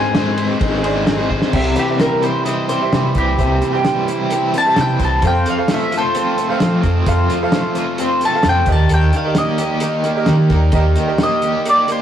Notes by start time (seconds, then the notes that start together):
Already playing: G#2 G#3 C4 D#4 G#4 C5 D#5 G#5
0.14 G#3 C4 D#4 G#4 C5, snare, ride
0.37 D#4 G#4 C5, ride
0.59 G#1 G#3 C4 D#4 G#4 C5, kick, ride
0.83 G#3 C4 D#4 G#4 C5 D5, ride
1.06 C4 D#4 G#4 C5, snare, ride
1.30 D#4 G#4 C5, kick
1.42 snare
1.53 C2 C3 G3 C4 E4 G4 C5 E5, kick, crash
1.75 E3 C4 E4 G4 C5, closed hi-hat
1.89 G4 C5 E5
1.97 G3 C4 E4 G4 A#4 C5, snare, closed hi-hat
2.21 C4 E4 G4 C5, closed hi-hat
2.45 C3 G3 C4 E4 G4 C5 D#5, closed hi-hat
2.67 G3 C4 E4 G4 C5, closed hi-hat
2.80 G4 C5 E5
2.92 C3 E3 C4 E4 G4 C5, snare, closed hi-hat
3.15 C2 C4 E4 G4 C5, kick, closed hi-hat
3.37 C2 C3 G3 C4 E4 G4 C5 E5, kick, closed hi-hat
3.60 E3 C4 E4 G4 C5, closed hi-hat
3.72 G4 C5 G5
3.85 G3 C4 E4 G4 C5, snare, closed hi-hat
4.07 C4 E4 G4 C5, closed hi-hat
4.30 C3 G3 C4 E4 G4 C5, closed hi-hat
4.54 G3 C4 E4 G4 C5 A5, closed hi-hat
4.65 G4 C5 E5
4.76 C3 E3 C4 E4 G4 C5, snare, closed hi-hat
4.81 G5
4.99 C2 C4 E4 G4 C5, kick, closed hi-hat
5.04 C4 A5
5.22 F2 F3 C4 F4 A4 C5 F5, kick, closed hi-hat
5.27 G5
5.45 F3 F4 A4 C5, closed hi-hat
5.50 F5
5.57 A4 C5 F5
5.68 A3 C4 F4 A4 C5, snare, closed hi-hat
5.74 E5
5.91 F4 A4 C5, closed hi-hat
5.97 A4 C5
6.14 F3 C4 F4 A4 C5, closed hi-hat
6.37 A3 F4 A4 C5, closed hi-hat
6.48 A4 C5 F5
6.60 F3 C4 F4 A4 C5, snare, closed hi-hat
6.82 F2 C4 A4 C5, kick, closed hi-hat
6.86 F4
7.06 F2 F3 C4 F4 A4 C5 F5, kick, closed hi-hat
7.29 F3 F4 A4 C5, closed hi-hat
7.42 A4 C5 F5
7.52 A3 C4 F4 A4 C5, snare, closed hi-hat
7.75 F4 A4 C5, closed hi-hat
7.98 F3 C4 F4 A4 C5, closed hi-hat
8.21 A3 A4 C5, closed hi-hat
8.25 F4 A5
8.34 A4 C5 F5
8.43 F2 F3 C4 F4, snare, closed hi-hat
8.47 A4 C5 G5
8.66 D#2 D#3 G4 A#4 D#5, kick, closed hi-hat
8.70 G3 G4 A5
8.89 D#2 D#3 G3 A#3 G4 A#4, closed hi-hat
8.94 G5
9.13 D#3 G3 G4 A#4 F5, closed hi-hat
9.25 G4 A#4 D#5
9.35 G3 A#3 G4 A#4 D#5, snare, closed hi-hat
9.58 G3 G4 A#4 D#5, closed hi-hat
9.80 D#3 G3 A#3 D#4 G4 A#4, closed hi-hat
10.04 G3 A#3 G4 A#4, closed hi-hat
10.15 G4 A#4 D#5
10.26 D#3 G3 A#3 G4, snare, closed hi-hat
10.31 A#4
10.49 D#2 D#4 G4 A#4, kick, closed hi-hat
10.54 G3
10.72 D#2 D#3 G3 A#3 G4 A#4 D#5, kick, closed hi-hat
10.96 D#3 G3 G4 A#4, closed hi-hat
11.07 G4 A#4 D#5
11.18 G3 A#3 G4, snare, closed hi-hat
11.23 A#4 D#5
11.42 G4 A#4, closed hi-hat
11.46 G3
11.65 D#3 G3 A#3 D#4 G4 A#4 D5, closed hi-hat
11.88 G3 A#3 G4 A#4 C5, closed hi-hat